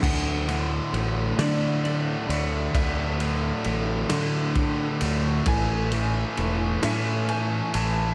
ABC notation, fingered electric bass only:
X:1
M:6/8
L:1/8
Q:3/8=44
K:Dlyd
V:1 name="Fingered electric bass" clef=bass
D,,2 A,,, D,2 D,, | D,,2 A,,, D,2 D,, | A,,,2 E,,, A,,2 A,,, |]